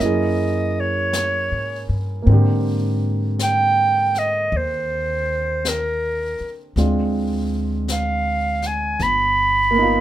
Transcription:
Already playing: A#3
0.00 F#2 C#4 E4 D#5, brush sweep, snare
0.06 G#4
0.80 C#5
1.13 brush sweep, snare, hi-hat pedal
1.52 G#2
1.89 G2
2.22 A#3 C4
2.27 G#2 D3, brush sweep
2.33 G4
3.39 brush sweep, snare, hi-hat pedal
3.43 G5
4.14 snare
4.18 D#5
4.52 D#2, brush sweep
4.56 C5
5.65 A#4, brush sweep, snare, hi-hat pedal
6.41 muted upright bass stroke
6.76 D2 G#3 C4 D4 F4, brush sweep, snare
7.88 F5, brush sweep, snare, hi-hat pedal
8.62 snare
8.67 G#5
8.99 G1 B5, brush sweep, snare
9.71 A#3 B3
9.78 D#4 F4

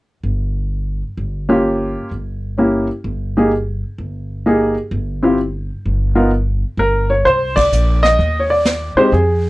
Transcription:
0.23 G1
1.17 G1
1.49 A#3 C#4 F4 G4
2.11 G1
2.58 A#3 C#4 E4 G4
3.04 G1
3.37 A#3 D#4 G4 G#4
3.98 G1
4.46 A#3 D#4 G4 G#4
4.91 G1
5.23 C4 E4 F4 G4
5.86 G1
6.15 B3 D#4 F4 A#4
6.77 G1 A#4
7.10 C#5
7.25 C2 C5, brush sweep, kick
7.56 D5, kick, ride
7.72 A#1, hi-hat pedal
8.03 D#5, snare
8.19 D#2, brush sweep, kick
8.40 C#5
8.50 D5
8.65 snare, hi-hat pedal
8.95 G#3 C4 D#4 G4 C5, muted upright bass stroke
9.12 F2 G#4, brush sweep, kick

